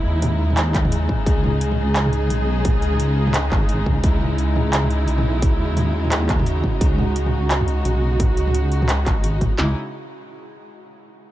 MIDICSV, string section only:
0, 0, Header, 1, 2, 480
1, 0, Start_track
1, 0, Key_signature, 4, "minor"
1, 0, Tempo, 346821
1, 1748, Time_signature, 4, 2, 24, 8
1, 15661, End_track
2, 0, Start_track
2, 0, Title_t, "String section"
2, 0, Program_c, 0, 48
2, 0, Note_on_c, 0, 49, 77
2, 0, Note_on_c, 0, 56, 70
2, 0, Note_on_c, 0, 63, 69
2, 0, Note_on_c, 0, 64, 83
2, 1737, Note_off_c, 0, 64, 0
2, 1750, Note_on_c, 0, 68, 85
2, 5579, Note_off_c, 0, 68, 0
2, 5587, Note_on_c, 0, 64, 86
2, 9417, Note_off_c, 0, 64, 0
2, 9417, Note_on_c, 0, 66, 86
2, 13211, Note_off_c, 0, 56, 0
2, 13212, Note_off_c, 0, 49, 0
2, 13212, Note_off_c, 0, 63, 0
2, 13252, Note_off_c, 0, 66, 0
2, 13269, Note_on_c, 0, 56, 64
2, 13270, Note_on_c, 0, 64, 80
2, 13271, Note_on_c, 0, 49, 72
2, 13271, Note_on_c, 0, 63, 64
2, 13492, Note_off_c, 0, 49, 0
2, 13492, Note_off_c, 0, 56, 0
2, 13492, Note_off_c, 0, 63, 0
2, 13492, Note_off_c, 0, 64, 0
2, 15661, End_track
0, 0, End_of_file